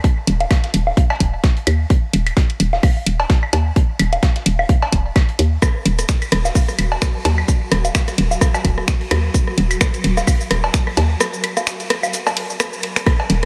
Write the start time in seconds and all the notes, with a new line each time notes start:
0.04 kick, closed hi-hat
0.27 D#1, closed hi-hat
0.40 closed hi-hat, low woodblock
0.51 kick, snare, closed hi-hat, claves
0.64 snare, closed hi-hat
0.74 D#1, closed hi-hat
0.87 low woodblock
0.97 kick, closed hi-hat
1.10 cowbell, claves
1.20 D#1, kick, closed hi-hat
1.44 kick, snare, closed hi-hat
1.57 closed hi-hat
1.67 D#2, closed hi-hat, claves
1.90 kick, closed hi-hat
2.13 D#1, closed hi-hat
2.26 closed hi-hat, claves
2.37 kick, snare, closed hi-hat
2.50 closed hi-hat
2.60 D#1, closed hi-hat
2.73 snare, low woodblock
2.83 kick, open hi-hat, claves
3.06 D#1, closed hi-hat
3.20 cowbell
3.30 kick, snare, closed hi-hat
3.43 claves
3.53 D#2, closed hi-hat, cowbell
3.76 kick, closed hi-hat
3.99 D#1, closed hi-hat, claves
4.13 closed hi-hat, low woodblock
4.23 kick, snare, closed hi-hat
4.36 snare, closed hi-hat
4.46 D#1, closed hi-hat
4.59 claves, low woodblock
4.69 kick, closed hi-hat
4.82 cowbell
4.92 D#1, kick, closed hi-hat
5.16 kick, snare, closed hi-hat, claves
5.29 closed hi-hat
5.39 D#2, closed hi-hat
5.62 F#3 F#4, kick, cross-stick, closed hi-hat, claves, shaker
5.85 D#1, closed hi-hat
5.99 cross-stick, closed hi-hat, shaker
6.09 finger snap, kick, snare, closed hi-hat, shaker
6.22 closed hi-hat, claves, shaker
6.32 D#1, cross-stick, closed hi-hat
6.45 snare, low woodblock, shaker
6.55 kick, open hi-hat, shaker
6.68 cross-stick, shaker
6.79 D#1, closed hi-hat, claves
6.92 cowbell
7.02 finger snap, kick, cross-stick, snare, closed hi-hat, shaker
7.25 D#2, closed hi-hat, cowbell
7.38 claves
7.48 kick, closed hi-hat, shaker
7.72 D#1, cross-stick, closed hi-hat
7.85 closed hi-hat, low woodblock, shaker
7.95 finger snap, kick, snare, closed hi-hat, claves, shaker
8.08 cross-stick, snare, closed hi-hat, shaker
8.18 D#1, closed hi-hat
8.31 low woodblock, shaker
8.41 kick, cross-stick, closed hi-hat, shaker
8.54 cowbell, claves, shaker
8.65 D#1, kick, closed hi-hat
8.78 cross-stick
8.88 finger snap, kick, snare, closed hi-hat, shaker
9.01 closed hi-hat
9.11 D#2, cross-stick, closed hi-hat, claves
9.34 kick, closed hi-hat, shaker
9.47 cross-stick
9.58 D#1, closed hi-hat
9.71 closed hi-hat, claves, shaker
9.81 finger snap, kick, cross-stick, snare, closed hi-hat, shaker
9.94 closed hi-hat, shaker
10.04 D#1, closed hi-hat
10.17 cross-stick, snare, low woodblock, shaker
10.27 kick, open hi-hat, claves, shaker
10.41 shaker
10.51 D#1, cross-stick, closed hi-hat
10.64 cowbell
10.74 finger snap, kick, snare, closed hi-hat, shaker
10.87 cross-stick, claves
10.97 D#2, closed hi-hat, cowbell
11.20 cross-stick, closed hi-hat, shaker
11.34 shaker
11.44 closed hi-hat, claves
11.57 cross-stick, closed hi-hat, low woodblock, shaker
11.67 finger snap, snare, closed hi-hat, shaker
11.80 snare, closed hi-hat, shaker
11.90 cross-stick, closed hi-hat
12.03 claves, low woodblock, shaker
12.13 closed hi-hat, shaker
12.27 cross-stick, cowbell, shaker
12.37 closed hi-hat, open hi-hat
12.50 shaker
12.60 finger snap, cross-stick, closed hi-hat, claves, shaker
12.73 shaker
12.83 closed hi-hat
12.96 finger snap, cross-stick, closed hi-hat, shaker
13.06 kick, cross-stick, closed hi-hat, claves
13.20 cowbell
13.30 D#1, closed hi-hat